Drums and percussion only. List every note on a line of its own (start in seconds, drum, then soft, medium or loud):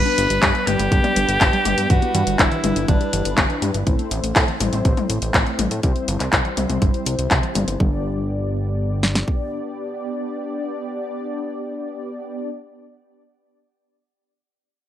0.06 closed hi-hat soft
0.18 closed hi-hat medium
0.30 closed hi-hat medium
0.43 kick loud
0.43 clap loud
0.43 closed hi-hat medium
0.55 closed hi-hat soft
0.67 closed hi-hat medium
0.67 high tom medium
0.79 closed hi-hat medium
0.79 high tom medium
0.92 kick loud
0.92 closed hi-hat medium
1.04 closed hi-hat soft
1.04 high tom medium
1.16 closed hi-hat loud
1.29 closed hi-hat medium
1.41 kick loud
1.41 clap loud
1.41 closed hi-hat medium
1.53 closed hi-hat soft
1.65 closed hi-hat medium
1.65 high tom medium
1.78 closed hi-hat medium
1.90 kick loud
1.90 closed hi-hat medium
2.02 closed hi-hat soft
2.15 closed hi-hat medium
2.27 closed hi-hat medium
2.39 kick loud
2.39 clap loud
2.39 closed hi-hat medium
2.52 closed hi-hat soft
2.64 closed hi-hat medium
2.64 high tom medium
2.76 closed hi-hat medium
2.88 kick loud
2.88 closed hi-hat medium
3.01 closed hi-hat soft
3.13 closed hi-hat loud
3.25 closed hi-hat medium
3.38 kick loud
3.38 clap loud
3.38 closed hi-hat medium
3.50 closed hi-hat soft
3.62 closed hi-hat medium
3.62 high tom medium
3.74 closed hi-hat soft
3.87 kick loud
3.87 closed hi-hat soft
3.99 closed hi-hat soft
4.11 closed hi-hat medium
4.24 closed hi-hat medium
4.36 kick loud
4.36 clap loud
4.36 closed hi-hat medium
4.48 closed hi-hat soft
4.60 closed hi-hat medium
4.60 high tom medium
4.73 closed hi-hat soft
4.73 high tom medium
4.85 kick loud
4.85 closed hi-hat soft
4.97 closed hi-hat soft
4.97 high tom medium
5.10 closed hi-hat medium
5.22 closed hi-hat soft
5.34 kick loud
5.34 clap loud
5.34 closed hi-hat soft
5.47 closed hi-hat soft
5.59 closed hi-hat medium
5.59 high tom medium
5.71 closed hi-hat soft
5.83 kick loud
5.83 closed hi-hat soft
5.96 closed hi-hat soft
6.08 closed hi-hat medium
6.20 clap soft
6.20 closed hi-hat soft
6.33 kick loud
6.33 clap loud
6.33 closed hi-hat soft
6.45 closed hi-hat soft
6.57 closed hi-hat medium
6.57 high tom medium
6.70 closed hi-hat soft
6.70 high tom medium
6.82 kick loud
6.82 closed hi-hat soft
6.94 closed hi-hat soft
7.06 closed hi-hat medium
7.19 closed hi-hat soft
7.31 kick loud
7.31 clap loud
7.31 closed hi-hat soft
7.43 closed hi-hat soft
7.55 closed hi-hat medium
7.55 high tom medium
7.68 closed hi-hat soft
7.80 kick loud
9.03 snare medium
9.15 snare medium
9.28 kick medium